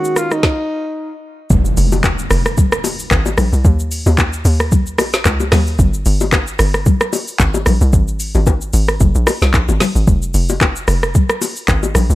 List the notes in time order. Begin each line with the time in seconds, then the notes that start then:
Already playing: D#3 G#3 A#3 C#4 F#4
0.05 shaker
0.16 F4, cross-stick, shaker
0.31 D#4, cross-stick, shaker
0.43 kick, snare
1.50 F1, kick, impact, low conga, shaker
1.65 shaker
1.77 F1, open hi-hat, shaker
1.92 low bongo, shaker
2.04 kick, clap, high bongo, low bongo, shaker
2.19 shaker
2.31 F1, cross-stick, open hi-hat, shaker
2.46 cross-stick, shaker
2.57 kick, low conga, shaker
2.72 cross-stick, shaker
2.84 open hi-hat, low bongo, shaker
2.99 shaker
3.11 G#1, kick, clap, high bongo, shaker
3.26 low bongo, shaker
3.38 A#1, cross-stick, open hi-hat, high bongo, low conga, shaker
3.53 C2, shaker
3.65 D#2, kick, low conga, shaker
3.80 shaker
3.92 open hi-hat, shaker
4.06 D#2, low bongo, shaker
4.18 kick, clap, high bongo, low bongo, shaker
4.33 shaker
4.45 D#2, open hi-hat, shaker
4.60 cross-stick, shaker
4.72 kick, low conga, shaker
4.87 shaker
4.98 A#1, cross-stick, open hi-hat, low bongo, shaker
5.13 snare, shaker
5.25 C#2, kick, clap, high bongo, shaker
5.40 low bongo, shaker
5.52 D#2, cross-stick, snare, open hi-hat, high bongo, low conga, shaker
5.67 shaker
5.79 G1, kick, low conga, shaker
5.94 shaker
6.06 G1, open hi-hat, shaker
6.20 low bongo, shaker
6.32 kick, clap, high bongo, low bongo, shaker
6.47 shaker
6.59 G1, cross-stick, open hi-hat, shaker
6.74 cross-stick, shaker
6.86 kick, low conga, shaker
7.01 cross-stick, shaker
7.13 open hi-hat, low bongo, shaker
7.28 shaker
7.39 G#1, kick, clap, high bongo, shaker
7.54 low bongo, shaker
7.66 A#1, cross-stick, open hi-hat, high bongo, low conga, shaker
7.81 C2, shaker
7.93 G#1, kick, low conga, shaker
8.08 shaker
8.20 open hi-hat, shaker
8.35 G#1, low bongo, shaker
8.47 kick, high bongo, low bongo, shaker
8.61 shaker
8.73 G#1, open hi-hat, shaker
8.88 cross-stick, shaker
9.00 F#1, kick, low conga, shaker
9.15 A#1, shaker
9.27 cross-stick, open hi-hat, low bongo, shaker
9.42 C2, snare, shaker
9.54 A#1, kick, clap, high bongo, shaker
9.69 G#1, low bongo, shaker
9.80 snare, open hi-hat, high bongo, low conga, shaker
9.96 G#1, shaker
10.07 F1, kick, low conga, shaker
10.22 shaker
10.34 F1, open hi-hat, shaker
10.49 low bongo, shaker
10.61 kick, clap, high bongo, low bongo, shaker
10.76 shaker
10.88 F1, cross-stick, open hi-hat, shaker
11.03 cross-stick, shaker
11.15 kick, low conga, shaker
11.30 cross-stick, shaker
11.41 open hi-hat, low bongo, shaker
11.56 shaker
11.68 G#1, kick, clap, high bongo, shaker
11.83 low bongo, shaker
11.95 A#1, cross-stick, open hi-hat, high bongo, low conga, shaker
12.10 C2, shaker